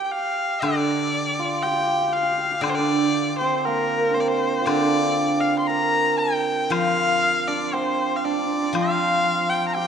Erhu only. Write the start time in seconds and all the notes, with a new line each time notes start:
0.04 G5
0.12 F5
0.62 D5
1.63 G5
2.12 F5
2.62 D5
2.69 C5
2.75 D5
3.38 C5
3.57 C5
3.65 A#4
4.14 C5
4.20 D5
4.28 C5
4.66 D5
5.40 F5
5.59 C6
5.67 A#5
6.18 G5
6.71 F5
7.47 D5
7.74 C5
8.16 F5
8.24 D5
8.76 F5
9.49 G5
9.68 A#5
9.75 G5